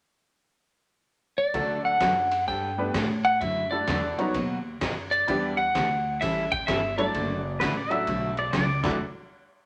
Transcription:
1.38 1.85 D5 medium
1.54 1.99 D2 medium
1.54 1.76 D3 medium
1.54 2.25 F#3 medium
1.54 1.77 F#3 medium
1.54 2.25 A3 medium
1.54 1.77 A3 medium
1.54 2.25 D4 medium
1.54 1.77 D4 medium
1.54 2.26 F#4 medium
1.54 1.77 F#4 medium
1.54 2.26 A4 medium
1.54 kick soft
1.54 ride medium
1.85 2.47 F#5 medium
2.01 2.46 F#2 loud
2.01 2.12 D3 medium
2.01 2.13 F#3 medium
2.01 2.13 A3 medium
2.01 2.13 D4 medium
2.01 2.13 F#4 medium
2.01 kick soft
2.01 snare medium
2.01 hi-hat pedal medium
2.01 ride medium
2.32 ride medium
2.47 2.93 G2 medium
2.47 2.70 G3 medium
2.47 2.70 B3 medium
2.47 2.70 D4 medium
2.47 2.70 A4 medium
2.47 2.91 G5 medium
2.47 kick soft
2.78 2.92 A3 medium
2.78 2.93 B3 medium
2.78 2.93 D4 medium
2.78 2.93 G4 medium
2.78 2.93 B4 medium
2.94 3.40 A2 medium
2.94 3.06 G3 medium
2.94 3.06 B3 medium
2.94 3.07 D4 medium
2.94 3.07 A4 medium
2.94 kick soft
2.94 snare medium
2.94 hi-hat pedal medium
2.94 ride medium
3.25 3.41 F#5 loud
3.41 3.86 F#2 medium
3.41 3.63 D3 medium
3.41 3.63 F#3 medium
3.41 3.64 A3 medium
3.41 3.64 E4 medium
3.41 3.64 F#4 medium
3.41 3.69 E5 loud
3.41 kick soft
3.41 ride medium
3.71 4.15 A3 medium
3.71 4.15 D4 medium
3.71 4.15 E4 medium
3.71 4.15 F#4 medium
3.71 4.16 A4 medium
3.71 4.30 D5 medium
3.87 4.16 E2 loud
3.87 3.99 D3 medium
3.87 4.00 F#3 medium
3.87 4.00 A3 medium
3.87 4.00 E4 medium
3.87 4.00 F#4 medium
3.87 kick soft
3.87 snare medium
3.87 hi-hat pedal medium
3.87 ride medium
4.18 4.33 F#3 medium
4.18 4.33 B3 medium
4.18 4.33 D#4 medium
4.18 4.33 F#4 medium
4.18 4.33 C#5 medium
4.18 muted upright bass stroke soft
4.18 ride soft
4.34 4.80 D#2 medium
4.34 4.57 B2 medium
4.34 4.57 F#3 medium
4.34 4.57 B3 medium
4.34 4.57 D#4 medium
4.34 4.57 F#4 medium
4.34 kick soft
4.34 ride medium
4.81 5.26 F#2 medium
4.81 4.93 B2 medium
4.81 4.93 F#3 medium
4.81 4.93 B3 medium
4.81 4.93 D#4 medium
4.81 4.93 F#4 medium
4.81 kick soft
4.81 snare medium
4.81 hi-hat pedal medium
4.81 ride medium
5.11 5.59 D5 medium
5.11 ride soft
5.27 5.73 E2 medium
5.27 5.50 E3 medium
5.27 5.55 G3 medium
5.27 5.55 B3 medium
5.27 5.50 B3 medium
5.27 5.55 D4 medium
5.27 5.51 D4 medium
5.27 5.55 E4 medium
5.27 5.56 G4 medium
5.27 5.51 G4 medium
5.27 kick soft
5.27 ride medium
5.57 6.22 F#5 loud
5.75 6.20 D2 medium
5.75 5.86 E3 medium
5.75 5.86 B3 medium
5.75 5.87 D4 medium
5.75 5.87 G4 medium
5.75 kick soft
5.75 snare medium
5.75 hi-hat pedal medium
5.75 ride medium
6.21 6.66 A1 medium
6.21 6.43 E3 medium
6.21 6.44 G3 medium
6.21 6.44 C#4 medium
6.21 6.44 E4 medium
6.21 6.44 A4 medium
6.21 6.52 E5 medium
6.21 kick soft
6.21 ride medium
6.52 6.68 G5 loud
6.52 kick medium
6.67 7.13 G1 loud
6.67 6.79 E3 medium
6.67 6.80 G3 medium
6.67 6.80 C#4 medium
6.67 6.80 E4 medium
6.67 6.80 A4 medium
6.67 6.98 E5 loud
6.67 kick soft
6.67 snare medium
6.67 hi-hat pedal medium
6.67 ride medium
6.98 7.12 F#3 medium
6.98 7.12 A3 medium
6.98 7.12 D4 medium
6.98 7.13 E4 medium
6.98 7.13 A4 medium
6.98 8.49 D5 medium
6.98 ride soft
7.14 7.59 F#1 medium
7.14 7.36 D3 medium
7.14 7.36 F#3 medium
7.14 7.37 A3 medium
7.14 7.37 E4 medium
7.14 7.37 F#4 medium
7.14 kick soft
7.14 ride medium
7.60 8.05 A1 medium
7.60 7.72 D3 medium
7.60 7.72 F#3 medium
7.60 7.72 A3 medium
7.60 7.73 E4 medium
7.60 7.73 F#4 medium
7.60 7.75 B4 medium
7.60 kick soft
7.60 snare medium
7.60 hi-hat pedal medium
7.60 ride medium
7.77 7.91 D5 medium
7.90 8.05 F#3 medium
7.90 8.05 A3 medium
7.90 8.05 D4 medium
7.90 8.05 E4 medium
7.90 8.05 F#4 medium
7.90 8.36 E5 medium
7.90 ride soft
8.07 8.52 B1 medium
8.07 8.29 D3 medium
8.07 8.29 F#3 medium
8.07 8.29 A3 medium
8.07 8.29 E4 medium
8.07 8.30 F#4 medium
8.07 kick soft
8.07 ride medium
8.37 8.51 D5 medium
8.37 ride soft
8.52 8.83 C#2 medium
8.52 8.65 D3 medium
8.52 8.65 F#3 medium
8.52 8.65 A3 medium
8.52 8.65 E4 medium
8.52 8.65 F#4 medium
8.52 8.82 D5 medium
8.52 kick soft
8.52 snare medium
8.52 hi-hat pedal medium
8.52 ride medium
8.83 8.98 D2 medium
8.83 8.96 D3 medium
8.83 8.98 F#3 medium
8.83 8.97 F#3 medium
8.83 8.98 A3 medium
8.83 8.97 A3 medium
8.83 8.98 D4 medium
8.83 8.98 E4 medium
8.83 8.97 E4 medium
8.83 8.98 F#4 medium
8.83 8.97 F#4 medium
8.83 8.98 D5 medium
8.83 kick medium
8.83 snare medium
8.83 crash medium

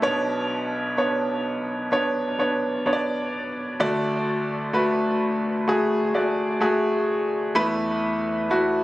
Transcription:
0.02 3.76 B1 medium
0.02 3.76 B2 medium
0.02 0.93 B3 medium
0.02 0.93 D4 medium
0.02 0.93 C#5 loud
0.98 1.87 B3 medium
0.98 1.87 D4 medium
0.98 1.88 C#5 medium
1.92 2.37 B3 medium
1.92 2.37 D4 medium
1.92 2.37 C#5 medium
2.39 2.84 B3 medium
2.39 2.84 D4 medium
2.39 2.84 C#5 medium
2.86 3.75 B3 medium
2.86 3.75 D4 medium
2.86 2.93 C#5 medium
2.93 3.79 D5 medium
3.80 7.52 D2 medium
3.80 7.52 D3 medium
3.80 4.69 A3 loud
3.80 4.69 F#4 medium
3.80 4.70 D5 loud
4.73 5.63 A3 medium
4.73 5.63 F#4 medium
4.73 5.63 B4 loud
5.68 6.12 A3 medium
5.68 6.12 F#4 medium
5.68 6.13 G#4 loud
6.14 6.59 A3 medium
6.14 6.59 F#4 medium
6.14 6.59 D5 medium
6.60 7.51 A3 medium
6.60 7.51 F#4 medium
6.60 7.51 G#4 medium
7.55 8.84 E2 medium
7.55 8.84 E3 medium
7.55 8.46 A3 loud
7.55 8.46 E4 loud
7.55 8.46 B4 loud
8.50 8.84 A3 medium
8.50 8.84 E4 medium
8.50 8.84 F#4 medium

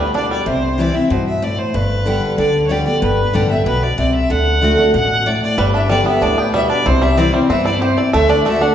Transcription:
0.00 0.26 D2 medium
0.00 0.13 A2 medium
0.00 0.30 G3 medium
0.00 0.11 B3 medium
0.00 0.14 D4 medium
0.00 0.14 B4 loud
0.14 0.45 B2 medium
0.14 0.47 D4 medium
0.14 0.30 D5 medium
0.31 0.47 G3 medium
0.31 0.46 D5 medium
0.46 0.90 C2 loud
0.46 1.07 C3 loud
0.46 0.81 C5 medium
0.78 0.94 E3 medium
0.78 0.94 G3 medium
0.78 0.94 C4 medium
0.78 0.93 E4 loud
0.78 0.97 D5 medium
0.94 1.11 C4 medium
0.94 1.10 E4 medium
0.94 1.12 E5 medium
1.10 1.54 G2 medium
1.10 1.41 B2 medium
1.10 1.26 C5 medium
1.27 1.45 E5 medium
1.42 1.73 A2 medium
1.42 1.60 D5 medium
1.59 1.76 C5 medium
1.74 2.18 G1 loud
1.74 2.35 G2 medium
1.74 2.38 B4 loud
2.05 2.36 D3 medium
2.05 2.37 G3 medium
2.05 2.37 B3 loud
2.05 2.37 G4 medium
2.38 2.82 D2 medium
2.38 2.68 D3 medium
2.38 2.64 D5 medium
2.66 2.85 D3 medium
2.66 2.86 G3 loud
2.66 2.72 C#5 medium
2.71 2.86 B3 medium
2.71 2.84 G4 medium
2.71 2.86 D5 medium
2.86 3.02 B3 medium
2.86 3.01 G4 medium
2.86 3.01 D5 loud
3.02 3.24 G1 loud
3.02 3.63 G2 loud
3.02 3.36 B4 loud
3.33 3.62 A1 medium
3.33 3.49 D3 medium
3.33 3.50 G3 medium
3.33 3.50 B3 loud
3.33 3.48 G4 loud
3.33 3.49 D5 medium
3.49 3.66 B3 medium
3.49 3.65 G4 medium
3.49 3.65 E5 medium
3.66 3.93 B1 medium
3.66 3.97 B2 medium
3.66 3.84 B4 loud
3.83 3.98 D5 medium
3.98 4.25 C2 medium
3.98 4.28 C3 medium
3.98 4.13 D5 loud
4.14 4.32 E5 loud
4.30 4.74 D2 medium
4.30 4.60 D3 loud
4.30 4.94 F#5 loud
4.61 4.77 D3 medium
4.61 4.78 A3 loud
4.61 4.78 D4 medium
4.61 4.76 F#4 loud
4.78 4.94 D4 medium
4.78 4.93 F#4 medium
4.94 5.37 A1 medium
4.94 5.24 B2 medium
4.94 5.28 F#5 loud
5.26 5.56 A2 medium
5.26 5.42 D5 loud
5.42 5.59 D5 loud
5.58 6.01 G1 loud
5.58 6.19 G2 loud
5.58 5.89 G3 medium
5.58 5.74 B4 medium
5.74 6.19 D4 medium
5.74 5.89 E5 loud
5.89 6.05 D3 medium
5.89 6.34 G3 medium
5.89 6.06 G3 medium
5.89 6.06 B3 loud
5.89 6.04 G4 medium
5.89 6.05 D5 loud
6.05 6.37 B3 medium
6.05 6.22 B3 soft
6.05 6.21 G4 medium
6.05 6.24 E5 loud
6.22 6.65 D2 medium
6.22 6.52 A2 medium
6.22 6.67 D4 medium
6.22 6.40 D5 loud
6.38 6.83 B3 medium
6.38 6.54 G5 loud
6.54 6.84 B2 medium
6.54 6.86 G3 medium
6.54 6.69 E5 loud
6.70 6.85 D4 medium
6.70 6.88 D5 loud
6.86 7.29 C2 loud
6.86 7.47 C3 medium
6.86 7.31 E4 medium
6.86 7.03 C5 loud
7.02 7.33 G3 medium
7.02 7.19 E5 loud
7.17 7.33 E3 medium
7.17 7.33 G3 loud
7.17 7.49 C4 medium
7.17 7.34 C4 loud
7.17 7.32 E4 medium
7.17 7.35 D5 loud
7.33 7.78 G3 medium
7.33 7.50 C4 soft
7.33 7.49 E4 medium
7.33 7.49 C5 medium
7.49 7.93 G2 medium
7.49 7.80 B3 medium
7.49 7.94 C4 medium
7.49 7.64 E5 loud
7.65 7.97 E4 medium
7.65 7.80 D5 loud
7.81 8.12 C3 medium
7.81 8.13 G4 medium
7.81 7.98 C5 loud
7.97 8.14 E4 medium
7.97 8.13 D5 loud
8.13 8.57 D2 loud
8.13 8.44 D3 medium
8.13 8.45 A3 medium
8.13 8.31 E5 loud
8.29 8.61 D4 medium
8.29 8.45 D5 medium
8.45 8.61 D3 medium
8.45 8.75 A3 medium
8.45 8.61 A3 medium
8.45 8.62 D4 loud
8.45 8.60 F#4 loud
8.45 8.63 E5 loud
8.61 8.75 D4 medium
8.61 8.75 D4 soft
8.61 8.75 F#4 medium
8.61 8.75 F#5 loud

